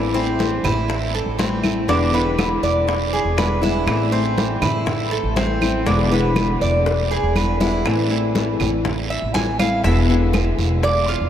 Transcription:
Already playing: A1 E3 A3 C4 E4
0.14 A3 C4 E4, high conga
0.39 E3 A3 C4 E4, high bongo, high conga, short guiro
0.64 A1 E4, high conga, low conga, short guiro, claves
0.88 muted nylon-string guitar stroke, high bongo, high conga, long guiro
1.14 A4, high conga
1.26 A1
1.38 E3 A3 C4 E4, high bongo, low bongo, high conga, short guiro
1.63 A3 C4 E4, high conga, short guiro, claves
1.88 E1 B2 D3 G#3 B3 D4 E4, high bongo, high conga, long guiro
2.13 D3 G#3 B3 E4 B4, high bongo, high conga
2.38 D3 G#3 B3 E4, high bongo, high conga, short guiro, claves
2.63 E1 D5, short guiro
2.87 muted nylon-string guitar stroke, high bongo, high conga, long guiro
3.13 G#4, high bongo, high conga
3.25 E1
3.37 D3 G#3 B3 E4 B4, high bongo, low bongo, high conga, short guiro, claves
3.62 D3 G#3 B3 E4, high bongo, high conga, short guiro
3.87 A1 E3 A3 C4 E4, high bongo, high conga, long guiro, claves
4.11 A3 C4 E4, high conga
4.36 E3 A3 C4 E4, high bongo, high conga, short guiro
4.62 A1 E4, high conga, low conga, short guiro, claves
4.86 muted nylon-string guitar stroke, high bongo, high conga, low conga, long guiro
5.11 A4, high conga
5.23 A1
5.36 E3 A3 C4 E4, high bongo, low bongo, high conga, short guiro
5.61 A3 C4 E4, high conga, short guiro, claves
5.86 E1 B2 D3 G#3 B3 D4 E4, high bongo, high conga, long guiro
6.11 D3 G#3 B3 E4 B4, high bongo, high conga
6.36 D3 G#3 B3 E4, high bongo, high conga, short guiro, claves
6.61 E1 D5, short guiro
6.86 muted nylon-string guitar stroke, high bongo, high conga, long guiro
7.11 G#4, high conga
7.23 E1
7.35 D3 G#3 B3 E4 B4, high conga, short guiro, claves
7.60 D3 G#3 B3 E4, low bongo, high conga, short guiro
7.85 A1 E3 A3 C4 E4, high bongo, high conga, long guiro, claves
8.11 A3 C4 E4, high conga
8.35 E3 A3 C4 E4, high bongo, high conga, short guiro
8.60 A1, high conga, low conga, short guiro, claves
8.85 muted nylon-string guitar stroke, high bongo, high conga, low conga, long guiro
9.10 E5, high conga
9.22 A1
9.34 E3 A3 C4 E4 G#5, high bongo, low bongo, high conga, short guiro
9.59 A3 C4 E4 F5, high conga, short guiro, claves
9.84 E1 B2 D3 G#3 B3 E4 E5, high bongo, high conga, long guiro
10.09 D3 G#3 B3 E4, high bongo, high conga
10.33 D3 G#3 B3 E4, high bongo, high conga, short guiro, claves
10.58 E1, high bongo, high conga, short guiro
10.83 D5, muted nylon-string guitar stroke, high bongo, high conga, long guiro
11.08 F4, high bongo, high conga
11.21 E1

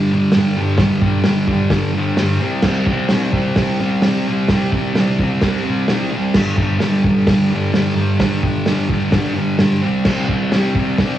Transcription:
Already playing: G2 D3 G3
0.11 D3 G3
0.16 G2
0.32 G2, snare, open hi-hat
0.37 D3 G3
0.56 G3
0.61 D3
0.78 G2 D3, kick, snare, open hi-hat
0.84 G3
1.02 G3, kick
1.06 D3
1.24 G2 D3, snare, open hi-hat
1.29 G3
1.47 G3, kick
1.52 D3
1.70 G2 D3, kick, snare, open hi-hat
1.75 G3
1.93 D3 G3
1.98 G2
2.17 G2 D3, snare, open hi-hat
2.22 G3
2.40 G3 C4
2.45 C3
2.62 C3 G3, kick, snare, crash
2.68 C4
2.87 C4, kick
2.92 G3
3.09 C3, snare, open hi-hat
3.13 G3 C4
3.32 C4, kick
3.38 G3
3.56 C3 G3, kick, snare, open hi-hat
3.62 C4
3.80 G3 C4
3.85 C3
4.02 C3 G3, snare, open hi-hat
4.07 C4
4.27 C4
4.32 G3
4.48 C3, kick, snare, open hi-hat
4.53 G3 C4
4.72 C4, kick
4.77 G3
4.94 C3 G3, snare, open hi-hat
5.00 C4
5.19 C4, kick
5.24 G3
5.41 C3, kick, snare, open hi-hat
5.46 G3 C4
5.64 G3 C4
5.70 C3
5.88 C3 G3, snare, open hi-hat
5.94 C4
6.11 C4
6.17 G3
6.34 G2 D3, kick, snare, crash
6.39 G3
6.57 G3, kick
6.62 D3
6.80 G2 D3, snare, open hi-hat
6.85 G3
7.04 G3, kick
7.09 D3
7.27 G2, kick, snare, open hi-hat
7.31 D3 G3
7.51 D3 G3
7.55 G2
7.73 G2 D3, snare, open hi-hat
7.77 G3
7.96 G3
8.01 D3
8.20 G2 D3, kick, snare, open hi-hat
8.26 G3
8.43 G3, kick
8.49 D3
8.66 G2 D3, snare, open hi-hat
8.71 G3
8.90 G3, kick
8.94 D3
9.11 G2 D3, kick, snare, open hi-hat
9.17 G3
9.34 D3 G3
9.39 G2
9.58 G2 D3, snare, open hi-hat
9.64 G3
9.82 G3 C4
9.87 C3
10.05 C3 G3, kick, snare, crash
10.10 C4
10.29 C4, kick
10.34 G3
10.52 C3 G3, snare, open hi-hat
10.57 C4
10.74 C4, kick
10.80 G3
10.98 C3 G3, kick, snare, open hi-hat
11.04 C4

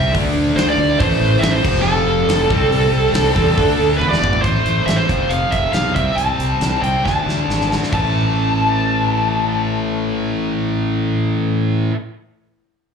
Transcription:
Already playing: C2 C3 G3 C4 E5
0.12 D2 D3 A3 D4, kick, open hi-hat
0.35 D2
0.56 D2 C5, snare, open hi-hat
0.69 D5
0.78 D2 D3 A3 D4
0.98 A1 A2 E3 A3 C5, kick, open hi-hat
1.20 A1
1.39 A1 E5, open hi-hat
1.44 snare
1.51 C5
1.62 F1 F2 C3 F3, kick, crash
1.82 F1 A4
2.05 F1
2.27 F1 F2 C3 F3, snare, open hi-hat
2.48 C2 C3 G3 C4, kick
2.70 C2, open hi-hat
2.92 C2
3.13 C2 C3 G3 C4, snare, open hi-hat
3.35 E2 C3 G3 C4, kick
3.57 D2 D3 A3 D4, kick, open hi-hat
3.78 D2
3.97 E1 E2 B4
4.01 B2 E3, high tom
4.09 D5
4.13 snare
4.22 G#1, mid tom
4.33 floor tom
4.42 A1 A2 E3 A3 C5, kick, closed hi-hat
4.65 A1, closed hi-hat
4.86 A1 E5, snare, closed hi-hat
4.96 C5
5.08 F1 F2 C3 F3, kick, closed hi-hat
5.29 F1 F5, closed hi-hat
5.52 F1 E5, kick, closed hi-hat
5.73 B1 F5, snare, closed hi-hat
5.95 C2 C3 G3 C4 E5, kick, closed hi-hat
6.16 C2 A5, closed hi-hat
6.39 C2, closed hi-hat
6.60 C2, snare, closed hi-hat
6.81 C2 C3 G3 C4 G5, closed hi-hat
7.05 D2 D3 A3 D4 A5, kick, snare
7.26 D2, snare
7.48 G#1, snare
7.61 snare
7.72 snare
7.83 snare
7.91 A1 A2 E3 A5, kick, crash
7.95 A3

